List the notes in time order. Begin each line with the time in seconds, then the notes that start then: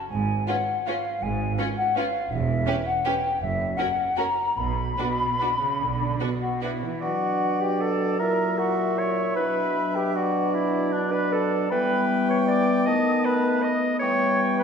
0.10 G#1 G#2 G#5
0.47 C#4 F4 B4 F#5
0.87 C#4 F4 B4 F5
1.22 G#1 G#2 G#5
1.58 C#4 F4 B4
1.77 F#5
1.96 C#4 F4 B4 F5
2.31 E1 E2 E5
2.66 C#4 G4 B4
2.86 F#5
3.05 C#4 G4 B4 G5
3.41 F#1 F#2 E5
3.77 C#4 F#4 A#4 F#5
4.17 C#4 F#4 A#4 A#5
4.56 B1 B2 B5
4.97 B2 D4 F#4 B4
5.39 D4 F#4 B4
5.60 C#3
5.80 B1 D3
6.20 B2 D4 F#4 B4
6.41 F#4 F#5
6.61 D4 E4 F#4 B4 E5
6.83 E3
7.01 B2 F#3 D4 F#4 D5 F#5
7.60 G4 G5
7.81 A4 A5
8.19 A#2 E4 A#4 E5 A#5
8.58 F#4 F#5
8.98 C#5 C#6
9.35 B2 F#3 D4 B4 B5
9.95 G4 G5
10.15 F#4 D5 F#5
10.52 E4 E5
10.92 D4 D5
11.12 B4 B5
11.32 A4 A5
11.70 E3 G3 B3 B4 G5 B5
12.29 C#5 C#6
12.48 D5 D6
12.85 D#3 A3 D#5 A5 D#6
13.25 B4 B5
13.62 D#5 D#6
13.99 E3 G3 B3 C#5 G5 C#6
14.58 B4 B5